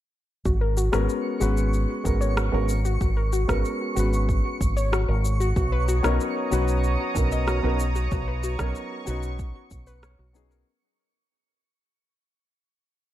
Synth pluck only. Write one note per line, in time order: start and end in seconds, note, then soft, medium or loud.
0.45 0.60 F#4 medium
0.61 0.76 A#4 medium
0.77 0.92 F#4 medium
0.93 1.08 B4 medium
1.41 1.56 F#4 loud
2.21 2.36 C#5 loud
2.37 2.51 F#4 medium
2.53 2.68 A#4 medium
2.85 2.99 F#4 medium
3.01 3.15 F#4 medium
3.17 3.32 A#4 medium
3.33 3.47 F#4 loud
3.49 3.64 B4 medium
3.96 4.11 F#4 loud
4.77 4.92 C#5 loud
4.92 5.07 F#4 medium
5.08 5.23 A#4 medium
5.40 5.55 F#4 loud
5.56 5.71 F#4 medium
5.72 5.87 B4 loud
5.88 6.03 F#4 loud
6.04 6.19 C#5 loud
6.52 6.66 F#4 loud
7.32 7.47 D#5 loud
7.48 7.62 F#4 medium
7.64 7.79 B4 medium
7.95 8.10 F#4 loud
8.12 8.26 F#4 medium
8.28 8.43 B4 medium
8.44 8.58 F#4 loud
8.59 8.75 C#5 loud
9.07 9.22 F#4 loud
9.87 10.02 B4 loud
10.03 10.18 C#5 medium
10.19 10.34 F#4 medium
10.51 10.66 A#4 medium